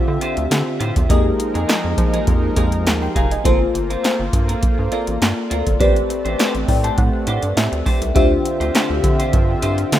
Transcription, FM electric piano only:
0, 0, Header, 1, 2, 480
1, 0, Start_track
1, 0, Key_signature, -1, "minor"
1, 0, Tempo, 588235
1, 898, Time_signature, 4, 2, 24, 8
1, 8155, End_track
2, 0, Start_track
2, 0, Title_t, "FM electric piano"
2, 0, Program_c, 0, 5
2, 0, Note_on_c, 0, 60, 69
2, 0, Note_on_c, 0, 65, 69
2, 0, Note_on_c, 0, 67, 67
2, 0, Note_on_c, 0, 76, 86
2, 862, Note_off_c, 0, 60, 0
2, 864, Note_off_c, 0, 65, 0
2, 866, Note_off_c, 0, 67, 0
2, 868, Note_off_c, 0, 76, 0
2, 891, Note_on_c, 0, 58, 75
2, 895, Note_on_c, 0, 67, 69
2, 898, Note_on_c, 0, 68, 68
2, 904, Note_on_c, 0, 75, 85
2, 2070, Note_off_c, 0, 58, 0
2, 2072, Note_off_c, 0, 67, 0
2, 2074, Note_off_c, 0, 68, 0
2, 2076, Note_off_c, 0, 75, 0
2, 2093, Note_on_c, 0, 58, 63
2, 2097, Note_on_c, 0, 67, 54
2, 2098, Note_on_c, 0, 68, 54
2, 2100, Note_on_c, 0, 75, 68
2, 2339, Note_off_c, 0, 75, 0
2, 2464, Note_on_c, 0, 84, 63
2, 2468, Note_on_c, 0, 79, 56
2, 2571, Note_off_c, 0, 84, 0
2, 2573, Note_off_c, 0, 79, 0
2, 2575, Note_on_c, 0, 82, 69
2, 2580, Note_on_c, 0, 77, 57
2, 2697, Note_off_c, 0, 82, 0
2, 2700, Note_off_c, 0, 77, 0
2, 2702, Note_on_c, 0, 80, 61
2, 2707, Note_on_c, 0, 75, 52
2, 2798, Note_off_c, 0, 58, 0
2, 2808, Note_on_c, 0, 58, 76
2, 2813, Note_on_c, 0, 65, 72
2, 2817, Note_off_c, 0, 67, 0
2, 2817, Note_on_c, 0, 69, 70
2, 2818, Note_off_c, 0, 68, 0
2, 2822, Note_on_c, 0, 72, 81
2, 2931, Note_off_c, 0, 80, 0
2, 2934, Note_off_c, 0, 75, 0
2, 3989, Note_off_c, 0, 58, 0
2, 3991, Note_off_c, 0, 65, 0
2, 3993, Note_off_c, 0, 69, 0
2, 3996, Note_off_c, 0, 72, 0
2, 4012, Note_on_c, 0, 58, 63
2, 4015, Note_on_c, 0, 65, 55
2, 4018, Note_on_c, 0, 69, 54
2, 4019, Note_on_c, 0, 74, 64
2, 4731, Note_on_c, 0, 60, 73
2, 4734, Note_off_c, 0, 74, 0
2, 4735, Note_off_c, 0, 58, 0
2, 4735, Note_on_c, 0, 67, 64
2, 4736, Note_off_c, 0, 65, 0
2, 4737, Note_off_c, 0, 69, 0
2, 4741, Note_on_c, 0, 71, 67
2, 4744, Note_on_c, 0, 74, 87
2, 5457, Note_on_c, 0, 79, 71
2, 5576, Note_off_c, 0, 79, 0
2, 5583, Note_on_c, 0, 81, 68
2, 5688, Note_off_c, 0, 81, 0
2, 5697, Note_on_c, 0, 78, 70
2, 6144, Note_off_c, 0, 78, 0
2, 6175, Note_on_c, 0, 76, 73
2, 6622, Note_off_c, 0, 60, 0
2, 6624, Note_off_c, 0, 67, 0
2, 6624, Note_off_c, 0, 76, 0
2, 6626, Note_off_c, 0, 71, 0
2, 6628, Note_off_c, 0, 74, 0
2, 6647, Note_on_c, 0, 62, 75
2, 6651, Note_on_c, 0, 65, 74
2, 6655, Note_on_c, 0, 67, 73
2, 6658, Note_on_c, 0, 72, 71
2, 6661, Note_on_c, 0, 76, 85
2, 7828, Note_off_c, 0, 62, 0
2, 7830, Note_off_c, 0, 65, 0
2, 7832, Note_off_c, 0, 67, 0
2, 7834, Note_off_c, 0, 72, 0
2, 7835, Note_off_c, 0, 76, 0
2, 7852, Note_on_c, 0, 62, 56
2, 7855, Note_on_c, 0, 64, 41
2, 7855, Note_on_c, 0, 67, 55
2, 7858, Note_on_c, 0, 72, 55
2, 7859, Note_on_c, 0, 76, 67
2, 7908, Note_on_c, 0, 65, 53
2, 7912, Note_off_c, 0, 64, 0
2, 8155, Note_off_c, 0, 62, 0
2, 8155, Note_off_c, 0, 65, 0
2, 8155, Note_off_c, 0, 67, 0
2, 8155, Note_off_c, 0, 72, 0
2, 8155, Note_off_c, 0, 76, 0
2, 8155, End_track
0, 0, End_of_file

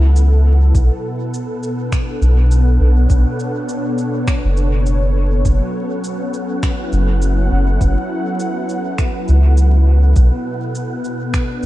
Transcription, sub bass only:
0, 0, Header, 1, 2, 480
1, 0, Start_track
1, 0, Key_signature, 2, "minor"
1, 0, Tempo, 588235
1, 612, Time_signature, 4, 2, 24, 8
1, 9511, End_track
2, 0, Start_track
2, 0, Title_t, "Sub bass"
2, 0, Program_c, 0, 38
2, 0, Note_on_c, 0, 37, 92
2, 592, Note_off_c, 0, 37, 0
2, 610, Note_on_c, 0, 35, 99
2, 735, Note_off_c, 0, 35, 0
2, 1806, Note_on_c, 0, 35, 85
2, 2270, Note_off_c, 0, 35, 0
2, 2287, Note_on_c, 0, 35, 92
2, 2505, Note_off_c, 0, 35, 0
2, 2529, Note_on_c, 0, 35, 101
2, 2654, Note_off_c, 0, 35, 0
2, 3625, Note_on_c, 0, 30, 82
2, 4429, Note_off_c, 0, 30, 0
2, 4450, Note_on_c, 0, 30, 97
2, 4575, Note_off_c, 0, 30, 0
2, 5650, Note_on_c, 0, 30, 90
2, 6112, Note_off_c, 0, 30, 0
2, 6132, Note_on_c, 0, 30, 95
2, 6348, Note_off_c, 0, 30, 0
2, 6372, Note_on_c, 0, 30, 95
2, 6496, Note_off_c, 0, 30, 0
2, 7577, Note_on_c, 0, 37, 96
2, 8275, Note_off_c, 0, 37, 0
2, 8292, Note_on_c, 0, 35, 100
2, 8415, Note_off_c, 0, 35, 0
2, 9511, End_track
0, 0, End_of_file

